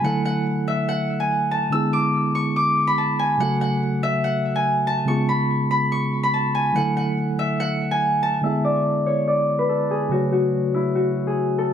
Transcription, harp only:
X:1
M:4/4
L:1/16
Q:1/4=143
K:F#m
V:1 name="Harp"
f2 f2 z2 e2 f3 g3 a2 | e'2 d'2 z2 c'2 d'3 b a2 g2 | f2 f2 z2 e2 f3 g3 a2 | c'2 b2 z2 b2 c'3 b a2 g2 |
f2 f2 z2 e2 f3 g3 a2 | e2 d2 z2 c2 d3 B A2 G2 | F2 F2 z2 E2 F3 G3 A2 |]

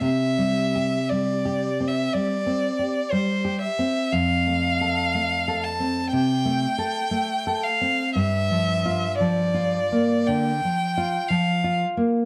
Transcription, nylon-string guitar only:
X:1
M:4/4
L:1/8
Q:1/4=59
K:Cmix
V:1 name="Nylon-string guitar"
(3C, G, G (3G, G C (3G, C G (3G, G C | (3F,, A, A (3A, A C (3C, A, A (3A, A C | (3G,, F, F (3F, F B, (3D, F, F (3F, F B, |]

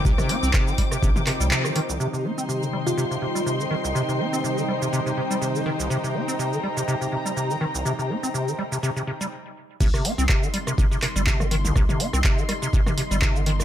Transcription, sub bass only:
X:1
M:4/4
L:1/16
Q:"Swing 16ths" 1/4=123
K:Cm
V:1 name="Sub bass" clef=bass
C,, G,,, z C,, z4 B,,, z2 C,, z4 | z16 | z16 | z16 |
z16 | C,, G,,, z C,, z6 z G,,,4- G,,, | C,, G,,, z C,, z6 z G,,,4- G,,, |]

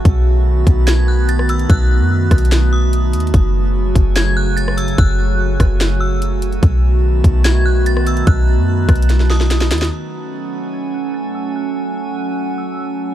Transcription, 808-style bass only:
X:1
M:4/4
L:1/16
Q:1/4=146
K:F#dor
V:1 name="808-style bass" clef=bass
B,,,6 B,,,8- B,,,2 | B,,,3 F,,3 B,,,8 D,,2 | F,,,6 F,,,8- F,,,2 | F,,,6 F,,,8- F,,,2 |
B,,,6 B,,,8- B,,,2 | B,,,3 F,,3 B,,,8 D,,2 | z16 | z16 |]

